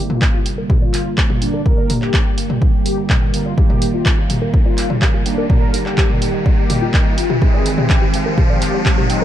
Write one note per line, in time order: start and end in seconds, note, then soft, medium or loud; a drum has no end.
0.00 1.39 D3 medium
0.00 1.39 G3 medium
0.00 3.54 G3 medium
0.00 1.39 A#3 medium
0.00 1.64 D4 medium
0.00 3.54 A#4 medium
0.00 riser medium
0.10 0.38 F4 medium
0.10 0.21 D5 medium
0.10 mid tom medium
0.22 0.30 D5 medium
0.22 kick loud
0.22 clap loud
0.34 0.42 G4 medium
0.46 0.54 G5 medium
0.46 open hi-hat loud
0.58 0.63 A#4 loud
0.70 0.81 G4 medium
0.70 kick loud
0.70 mid tom medium
0.82 1.10 F4 medium
0.82 0.90 D5 loud
0.94 1.05 A#5 medium
0.94 clap soft
0.94 open hi-hat loud
1.06 1.17 D5 medium
1.18 1.22 G4 loud
1.18 kick loud
1.18 clap loud
1.30 1.38 G4 medium
1.30 mid tom medium
1.42 1.63 D3 medium
1.42 1.63 G3 medium
1.42 1.63 A#3 medium
1.42 1.61 D4 medium
1.42 1.50 G5 medium
1.42 open hi-hat loud
1.54 1.59 A#4 loud
1.66 3.31 D3 medium
1.66 3.31 G3 medium
1.66 3.31 A#3 medium
1.66 3.56 C4 medium
1.66 1.94 A#4 loud
1.66 1.74 D5 medium
1.66 kick loud
1.78 1.86 D5 loud
1.90 1.98 A#4 medium
1.90 open hi-hat loud
1.90 mid tom medium
2.02 2.30 G4 loud
2.02 2.10 D5 medium
2.02 clap soft
2.14 2.18 G4 loud
2.14 kick loud
2.14 clap loud
2.38 2.46 G5 medium
2.38 open hi-hat loud
2.50 2.55 D5 medium
2.50 mid tom medium
2.62 2.70 D5 medium
2.62 kick loud
2.74 3.02 G4 medium
2.86 2.94 A#4 medium
2.86 open hi-hat loud
2.98 3.06 A#5 loud
3.10 3.14 D5 medium
3.10 kick loud
3.10 clap loud
3.10 mid tom medium
3.22 3.30 G5 loud
3.34 3.55 D3 medium
3.34 3.55 G3 medium
3.34 3.55 A#3 medium
3.34 3.53 F4 medium
3.34 open hi-hat loud
3.46 3.50 D5 medium
3.58 7.38 D#3 medium
3.58 5.23 D#3 medium
3.58 5.23 G3 medium
3.58 5.48 A#3 medium
3.58 5.23 A#3 medium
3.58 3.69 G4 medium
3.58 3.86 G4 loud
3.58 7.38 G4 medium
3.58 kick loud
3.70 3.78 D5 loud
3.70 mid tom medium
3.82 3.93 A#5 medium
3.82 open hi-hat loud
3.94 4.22 F4 medium
3.94 4.05 D5 medium
4.06 4.14 D#5 medium
4.06 kick loud
4.06 clap loud
4.18 4.26 G4 medium
4.30 4.38 G5 medium
4.30 open hi-hat loud
4.30 mid tom medium
4.42 4.46 A#4 loud
4.54 4.65 G4 medium
4.54 kick loud
4.66 4.94 F4 medium
4.66 4.74 D5 loud
4.78 4.89 A#5 medium
4.78 clap soft
4.78 open hi-hat loud
4.90 5.01 D5 medium
4.90 mid tom medium
5.02 5.07 G4 loud
5.02 kick loud
5.02 clap loud
5.14 5.22 G4 medium
5.26 5.47 D#3 medium
5.26 5.47 G3 medium
5.26 5.47 A#3 medium
5.26 5.45 D4 medium
5.26 5.34 G5 medium
5.26 open hi-hat loud
5.38 5.43 A#4 loud
5.50 7.15 D#3 medium
5.50 7.15 G3 medium
5.50 7.15 A#3 medium
5.50 7.40 C4 medium
5.50 5.78 A#4 loud
5.50 5.58 D5 medium
5.50 kick loud
5.50 mid tom medium
5.62 5.70 D5 loud
5.74 5.82 A#4 medium
5.74 open hi-hat loud
5.86 6.14 G4 medium
5.86 5.94 D5 medium
5.86 clap soft
5.98 6.03 G4 loud
5.98 kick loud
5.98 clap loud
6.10 mid tom medium
6.22 6.30 G5 medium
6.22 open hi-hat loud
6.34 6.39 D#5 medium
6.46 6.54 D5 medium
6.46 kick loud
6.58 6.86 G4 medium
6.70 6.78 G4 medium
6.70 open hi-hat loud
6.70 mid tom medium
6.82 6.90 F4 medium
6.94 7.02 G5 medium
6.94 kick loud
6.94 clap loud
7.06 7.11 D#5 medium
7.18 7.37 F4 medium
7.18 open hi-hat loud
7.30 7.38 G4 loud
7.30 mid tom medium
7.42 9.07 D#3 medium
7.42 9.24 G#3 medium
7.42 9.07 G#3 medium
7.42 9.07 C4 medium
7.42 9.24 D#4 medium
7.42 7.53 G4 medium
7.42 7.70 G#4 loud
7.42 9.24 C5 medium
7.42 kick loud
7.54 7.62 D5 loud
7.66 7.77 A#5 medium
7.66 open hi-hat loud
7.78 8.06 G4 medium
7.78 7.89 D5 medium
7.78 mid tom medium
7.90 7.98 D#5 medium
7.90 kick loud
7.90 clap loud
8.02 8.10 G4 medium
8.14 8.22 G5 medium
8.14 open hi-hat loud
8.26 8.31 A#4 loud
8.38 8.49 G4 medium
8.38 kick loud
8.38 mid tom medium
8.50 8.78 G4 medium
8.50 8.58 D5 loud
8.62 8.73 A#5 medium
8.62 clap soft
8.62 open hi-hat loud
8.74 8.85 D5 medium
8.86 8.90 G4 loud
8.86 kick loud
8.86 clap loud
8.98 9.06 G4 medium
8.98 mid tom medium
9.10 9.24 D#3 medium
9.10 9.24 G#3 medium
9.10 9.24 C4 medium
9.10 9.24 D#4 medium
9.10 9.18 G5 medium
9.10 open hi-hat loud